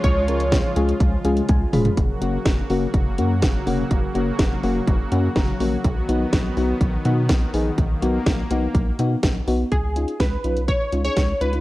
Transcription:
Already playing: analog synth pad C#3 F3 G#3 F4
0.04 analog synth bass C#2, analog polysynth C#5, kick, closed hi-hat
0.28 fm electric piano G#3 C#4 F4 A#4, closed hi-hat
0.40 closed hi-hat
0.52 kick, snare, closed hi-hat
0.76 analog synth bass C#2, fm electric piano G#3 C#4 F4 G#4, closed hi-hat
0.89 closed hi-hat
1.00 analog synth bass C#2, kick, closed hi-hat
1.25 analog synth bass C#2, fm electric piano G#3 C#4 F4 G#4 F5, closed hi-hat
1.37 closed hi-hat
1.49 analog synth bass C#2, fm electric piano G#5, kick, closed hi-hat, high tom
1.73 analog synth bass F1, fm electric piano G#3 C#4 F4 G#4 B5, mid tom, open hi-hat
1.85 closed hi-hat, floor tom
1.97 analog synth bass F#1, analog synth pad C#3 F#3 A#3 F#4, kick, closed hi-hat
2.22 analog synth bass F#1, fm electric piano A#3 C#4 F#4, closed hi-hat
2.46 analog synth bass F#1, kick, snare, closed hi-hat
2.70 analog synth bass F#1, fm electric piano A#3 C#4 F#4, open hi-hat
2.94 analog synth bass F#1, kick, closed hi-hat
3.18 analog synth bass F#2, fm electric piano A#3 C#4 F#4, closed hi-hat
3.42 analog synth bass F#1, kick, snare, closed hi-hat
3.67 analog synth bass F1, fm electric piano A#3 C#4 F#4, open hi-hat
3.91 analog synth bass F#1, kick, closed hi-hat
4.15 analog synth bass F#1, fm electric piano A#3 C#4 F#4, closed hi-hat
4.39 analog synth bass F#1, kick, snare, closed hi-hat
4.63 analog synth bass F#1, fm electric piano A#3 C#4 F#4, open hi-hat
4.87 analog synth bass F#1, kick, closed hi-hat
5.12 analog synth bass F#2, fm electric piano A#3 C#4 F#4, closed hi-hat
5.36 analog synth bass F#1, fm electric piano A#5, kick, snare, closed hi-hat
5.60 analog synth bass A#1, fm electric piano A#3 C#4 F#4 F#5, open hi-hat
5.84 analog synth bass B1, analog synth pad D#3 B3, kick, closed hi-hat
6.09 analog synth bass B1, fm electric piano B3 D#4 F#4, closed hi-hat
6.33 analog synth bass B1, kick, snare, closed hi-hat
6.57 analog synth bass B1, fm electric piano B3 D#4 F#4, open hi-hat
6.81 analog synth bass B1, kick, closed hi-hat
7.05 analog synth bass B2, fm electric piano B3 D#4 F#4, closed hi-hat
7.29 analog synth bass B1, kick, snare, closed hi-hat
7.54 analog synth bass A#1, fm electric piano B3 D#4 G#4, open hi-hat
7.78 analog synth bass B1, analog synth pad A#3, kick, closed hi-hat
8.02 analog synth bass B1, fm electric piano B3 D#4 F#4, closed hi-hat
8.26 analog synth bass B1, kick, snare, closed hi-hat
8.51 analog synth bass B1, fm electric piano B3 D#4 F#4, closed hi-hat
8.75 analog synth bass B1, kick, closed hi-hat
8.99 analog synth bass B2, fm electric piano B3 D#4 F#4, closed hi-hat
9.23 analog synth bass B1, kick, snare, closed hi-hat
9.47 analog synth bass B1, fm electric piano B3 D#4 F#4, open hi-hat
9.72 analog synth bass C#2, analog polysynth G#4, kick, closed hi-hat
9.96 fm electric piano C#4 D#4 F4, closed hi-hat
10.08 closed hi-hat
10.20 analog synth bass C#2, analog polysynth B4, kick, snare, closed hi-hat
10.44 analog synth bass B1, fm electric piano C#4 D#4 F4, closed hi-hat
10.57 closed hi-hat
10.68 analog polysynth C#5, kick, closed hi-hat
10.92 analog synth bass C#2, fm electric piano C#4 D#4 F4, closed hi-hat
11.05 fm electric piano C#4 D#4 G#4, analog polysynth C#5, closed hi-hat
11.17 analog synth bass C#2, kick, snare, closed hi-hat
11.41 analog synth bass C#2, fm electric piano C#4 D#4 F4, analog polysynth B4, closed hi-hat
11.53 fm electric piano C#4 D#4 F4, closed hi-hat

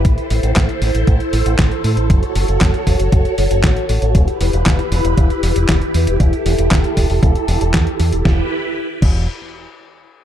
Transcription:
0.05 fingered electric bass A1, string machine E4 A4 C5, kick, closed hi-hat
0.18 closed hi-hat
0.30 fingered electric bass A1, open hi-hat
0.43 fingered electric bass A1, closed hi-hat
0.56 fingered electric bass A1, kick, snare, clap, closed hi-hat
0.69 closed hi-hat
0.82 fingered electric bass A1, open hi-hat
0.94 fingered electric bass A1, closed hi-hat
1.07 fingered electric bass A1, kick, closed hi-hat
1.20 closed hi-hat
1.33 fingered electric bass A1, open hi-hat
1.46 fingered electric bass A1, closed hi-hat
1.59 fingered electric bass A1, kick, snare, clap, closed hi-hat
1.71 closed hi-hat
1.84 fingered electric bass A2, open hi-hat
1.97 fingered electric bass A1, closed hi-hat
2.10 fingered electric bass F#1, string machine F#4 C#5, kick, closed hi-hat
2.23 closed hi-hat
2.35 fingered electric bass F#1, open hi-hat
2.48 fingered electric bass F#1, closed hi-hat
2.61 fingered electric bass F#1, kick, snare, clap, closed hi-hat
2.74 closed hi-hat
2.87 fingered electric bass F#1, kick, open hi-hat
3.00 fingered electric bass F#1, closed hi-hat
3.12 fingered electric bass F#1, kick, closed hi-hat
3.25 closed hi-hat
3.38 fingered electric bass F#1, open hi-hat
3.51 fingered electric bass F#1, closed hi-hat
3.64 fingered electric bass A1, kick, snare, clap, closed hi-hat
3.76 closed hi-hat
3.89 fingered electric bass A1, open hi-hat
4.02 fingered electric bass A1, closed hi-hat
4.15 fingered electric bass E1, string machine E4 G4 B4, kick, closed hi-hat
4.28 closed hi-hat
4.40 fingered electric bass E1, open hi-hat
4.53 fingered electric bass E1, closed hi-hat
4.66 fingered electric bass E1, kick, snare, clap, closed hi-hat
4.79 closed hi-hat
4.92 fingered electric bass E1, open hi-hat
5.04 fingered electric bass E1, closed hi-hat
5.17 fingered electric bass E1, kick, closed hi-hat
5.30 closed hi-hat
5.43 fingered electric bass E1, open hi-hat
5.56 fingered electric bass E1, closed hi-hat
5.69 fingered electric bass E1, kick, snare, clap, closed hi-hat
5.82 closed hi-hat
5.94 fingered electric bass E2, open hi-hat
6.07 fingered electric bass E1, closed hi-hat
6.20 fingered electric bass E1, string machine A4, kick, closed hi-hat
6.33 closed hi-hat
6.46 fingered electric bass E1, open hi-hat
6.58 fingered electric bass E1, closed hi-hat
6.71 fingered electric bass E1, kick, snare, clap, closed hi-hat
6.84 closed hi-hat
6.97 fingered electric bass E1, kick, open hi-hat
7.10 fingered electric bass E1, open hi-hat
7.23 fingered electric bass E1, kick, closed hi-hat
7.35 closed hi-hat
7.48 fingered electric bass E1, open hi-hat
7.61 fingered electric bass E1, closed hi-hat
7.74 fingered electric bass E2, kick, snare, clap, closed hi-hat
7.87 closed hi-hat
8.00 fingered electric bass E2, open hi-hat
8.12 fingered electric bass E1, closed hi-hat
8.25 fingered electric bass E1, string machine E4 G4 B4, kick, snare
9.02 fingered electric bass E1, kick, crash

